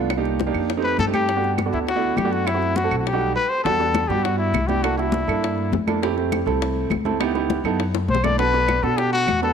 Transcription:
Already playing: C2
0.10 high bongo, high conga, claves
0.17 A#3 D4 D#4 G4
0.25 high bongo, high conga
0.40 high bongo, high conga
0.47 A#3 D4 D#4 G4
0.54 F2, high bongo, high conga, claves
0.70 high bongo, high conga
0.77 A3 C4 D#4 G4
0.83 B4, high conga
0.98 G2 A4, high bongo, low bongo, high conga
1.07 A3 C4 D#4 G4
1.14 G4, high bongo, high conga, claves
1.28 high bongo, high conga
1.36 A3 B3 D4 F#4
1.43 high bongo, high conga
1.58 high bongo, high conga, claves
1.66 A3 B3 D4 F#4
1.73 D2 E4, high bongo, high conga
1.88 F#4, high bongo, high conga
1.96 A3 B3 D4 E4
2.02 high conga
2.17 F#2 G4, high bongo, low bongo, high conga, claves
2.25 A3 B3 D4 F#4
2.32 F#4, high bongo
2.47 E4, high bongo, high conga, claves
2.54 A3 C4 E4 F#4
2.62 high bongo, high conga
2.76 F#4, high bongo, high conga
2.84 A3 C4 E4 A4
2.91 B1, high bongo, high conga, claves
2.99 F#4
3.06 G4, high bongo, high conga
3.13 G3 A3 D#4 F#4
3.21 high conga
3.35 B4
3.49 C5
3.64 E2 G3 B3 D4 F#4 A4, high bongo, high conga
3.80 G3 B3 D4 F#4, high bongo, high conga
3.94 high bongo, high conga, claves
4.08 G2 G3 B3 D4 F#4 G4, high bongo, high conga
4.24 F#4, high bongo, high conga
4.38 E4, high conga
4.53 C2, high bongo, low bongo, high conga, claves
4.67 G3 B3 D4 E4 G4, high bongo, high conga
4.83 A#3 D4 E4 F#4 A4, high bongo, claves
4.98 A#3 D4 E4 F#4, high bongo, high conga
5.12 high bongo, high conga
5.27 G2 A#3 D4 E4 A4, high bongo, high conga, claves
5.43 high bongo, high conga
5.58 high conga
5.72 F2, high bongo, low bongo, high conga
5.87 A#3 D4 E4 A4, high bongo, high conga, claves
6.02 A3 C4 E4 G4, high bongo
6.17 A3 C4 E4 G4, high bongo, high conga
6.32 high bongo, high conga, claves
6.46 C2 A3 C4 E4 A4, high bongo, high conga
6.62 high bongo, high conga
6.76 high conga
6.90 C#2, high bongo, low bongo, high conga, claves
7.05 A3 C4 E4 A4, high bongo, high conga
7.20 B3 D#4 E4 G4, high bongo, high conga, claves
7.35 B3 D#4 E4 G4, high bongo, high conga
7.50 high bongo, high conga
7.64 F#2 B3 D#4 E4 A4, high bongo, high conga, claves
7.80 high bongo, high conga
7.94 high bongo, high conga
8.08 B1 C5, high conga
8.15 low bongo
8.24 A#3 D4 E4 A4 D5, low bongo, high conga, claves
8.38 B3 D4 F#4 A4 B4, high bongo
8.53 B3 D4 F#4 A4, high bongo, high conga
8.68 high bongo, high conga, claves
8.83 B2 B3 D4 F#4 A4, high bongo, high conga
8.97 G4, high bongo, high conga
9.13 F#4, high conga
9.27 E2, high bongo, low bongo, high conga, claves
9.42 B3 D4 F#4 A4 B4, high bongo

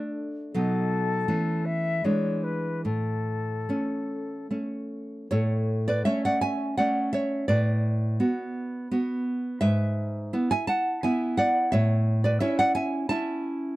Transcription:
Already playing: A3 D4
0.53 B2 F#3 D#4 A4
1.28 E3 A3 C#4
1.65 E5
2.04 E3 G#3 D4 C#5
2.43 B4
2.84 A2 A4
3.69 A3 C#4
4.51 A3 C#4
5.31 A2 A4 C#5
5.88 B4 D5
6.05 A3 C#4 C#5 E5
6.25 D5 F#5
6.41 E5 G#5
6.77 A3 C#4 D5 F#5
7.13 C#5 E5
7.48 A2 B4 D5
8.20 B3 F#4
8.91 B3 F#4
9.61 G#2 B4 E5
10.33 B3 E4
10.51 E5 G#5
10.67 F#5 A5
11.03 B3 E4 E5 G#5
11.37 D5 F#5
11.72 A2 C#5 E5
12.24 B4 D5
12.40 C#4 E4 C#5 E5
12.59 D5 F#5
12.75 E5 G#5
13.09 C#4 E4 E5 A5

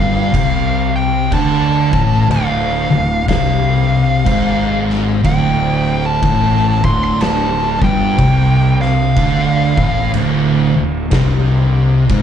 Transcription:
Already playing: G1 G2 F5
0.33 C2 C3, kick, crash
0.96 G5
1.31 D2 D3 A5, kick, crash
1.91 A1 A2, kick
2.28 D1 D2 F5, crash
2.90 D1 D2
3.27 C2 C3 F5, kick, snare, crash
4.25 G#1 G#2, kick, crash
4.90 snare
5.23 D1 D2 G5, kick, crash
6.06 A5
6.22 A1 A2, kick, crash
6.83 D1 D2 C6, kick
7.04 C6
7.21 A5, snare, crash
7.81 G1 G2 G5, kick
8.18 C2 C3, kick, crash
8.81 F5, snare
9.17 D2 D3, kick, crash
9.77 A1 A2, kick
10.14 D1 D2, crash
10.76 D1 D2
11.11 C2 C3, kick, snare, crash
12.09 G#1 G#2, kick, crash

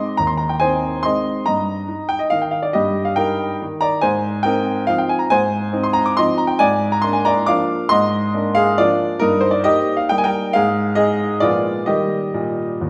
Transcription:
Already playing: G#3 C4 D#4 D#5 C6
0.17 D#2 A#5
0.27 C6
0.37 A#5
0.49 G5
0.60 C4 D#4 C5 G#5
1.03 G#3 C4 D#4 D#5 C6
1.46 G2 D#5 A#5
1.88 D#4
2.09 G5
2.19 D#5
2.30 D#3 D#4 F5
2.42 G5
2.51 F5
2.63 D5
2.73 G2 G4 D#5
3.05 F5
3.16 D#4 A#4 G5
3.62 D#3 D#4
3.81 D5 A#5
4.01 G#2 C5 G#5
4.43 C4 D#4 A#4 G5
4.87 F3 C4 D#4 F5
4.98 G5
5.09 G#5
5.19 A#5
5.30 G#2 C5 G#5
5.73 C4 D#4
5.83 C6
5.93 A#5
6.06 D6
6.17 F3 C4 D#4 D#5 C6
6.38 A#5
6.47 G5
6.59 G#2 D5 G#5
6.92 A#5
7.02 A#3 D4 C6
7.13 G#5
7.25 D5 A#5
7.46 F3 A#3 D4 F5 D6
7.89 G#2 D#5 C6
8.34 A#3 D4
8.55 G#4 F5
8.78 F3 A#3 D4 F4 D5
9.20 G2 D#4 A#4
9.41 C5
9.51 D5
9.64 A#3 D#4 G4 D#5
9.97 F5
10.09 G3 A#3 D#4 G5
10.18 G#5
10.24 A#4 G5
10.53 G#2 G#4 F5
10.95 G#3 D#4 G#4 D#5
11.40 A#2 F3 G#3 F4 D5
11.44 B3
11.86 D#3 G3 A#3 G4 D#5
12.34 A#2
12.81 D#2

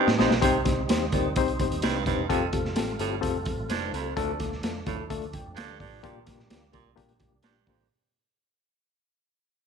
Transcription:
Already playing: G2 G3 C4 D#4 D#5
0.07 A2, snare
0.19 A#1 F2 C4 D#4 G4 C5 D#5, snare
0.31 B1, snare
0.41 C2 C3 G3 C4 D#4 G4 C5, kick, closed hi-hat
0.65 C2 C4 D#4 G4 C5, kick, snare, closed hi-hat
0.89 D#2 C4 D#4 G4 C5, snare, closed hi-hat
1.12 D2 A#2 C4 D#4 G4 C5, kick, closed hi-hat
1.36 C2 C4 D#4 G4 C5, kick, closed hi-hat
1.48 closed hi-hat
1.59 C4 D#4 G4 C5, kick, closed hi-hat
1.71 D#2, closed hi-hat
1.82 C2 G2 C4 D#4 G4 C5, snare, closed hi-hat
2.06 E1 G2 C4 D#4 G4 C5, kick, snare, closed hi-hat
2.28 F1 F2 A3 C4 F4 G4 A4, kick, closed hi-hat
2.53 F1 C4 F4 G4 A4, kick, closed hi-hat
2.65 snare
2.75 A1 C4 F4 G4 A4, snare, closed hi-hat
2.99 G1 A2 C4 F4 G4 A4, closed hi-hat
3.21 F1 C4 F4 G4 A4, kick, closed hi-hat
3.45 C4 A4, kick, closed hi-hat
3.57 A1
3.69 F1 G2 D#4 C5, snare, closed hi-hat
3.92 C#2 F2 C4 A4, closed hi-hat
4.16 D2 F3 A3 D4 F4 A4, kick, closed hi-hat
4.39 D2 A3 D4 F4 A4, kick, snare, closed hi-hat
4.52 snare
4.62 F2 A3 D4 F4 A4, snare, closed hi-hat
4.86 D#2 A2 A3 D4 F4 A4, kick, closed hi-hat
5.10 D2 A3 D4 F4 A4, kick, closed hi-hat
5.22 closed hi-hat
5.33 G5, kick, closed hi-hat
5.46 F2
5.56 D2 G2 A4 F5, snare, closed hi-hat
5.80 A1 G2 F4 D5, kick, open hi-hat
6.03 A#1 A#2 G3 A#3 D4 F4 G4, kick, closed hi-hat
6.26 A#1 A#3 D4 F4 G4, kick, snare, closed hi-hat
6.39 snare
6.50 D2 A#3 D4 F4 G4, snare, closed hi-hat
6.73 C2 A#2 A#3 D4 F4 G4, kick, closed hi-hat
6.96 A#1 A#3 D4 F4 G4, kick, closed hi-hat
7.08 closed hi-hat
7.19 A#3 D4 F4 G4, kick, closed hi-hat
7.32 C2
7.42 A#1 G2 A#3 D4 F4 G4, snare, closed hi-hat
7.67 A1 F2 A#3 D4 F4 G4, kick, open hi-hat

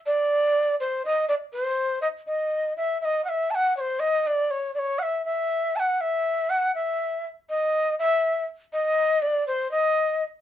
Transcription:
0.06 D5
0.80 C5
1.05 D#5
1.28 D5
1.53 C5
2.02 D#5
2.27 D#5
2.77 E5
3.01 D#5 E5
3.24 F#5
3.29 E5
3.50 A5
3.55 F#5
3.77 C5 C#5
4.00 D#5
4.27 D5
4.51 C#5
4.74 D5
4.79 C#5
4.99 E5 F#5
5.25 E5
5.76 F#5 A5
6.01 E5
6.50 F#5
6.75 E5
7.49 D#5
7.99 E5
8.73 D#5
9.22 D5
9.47 C5
9.71 D#5

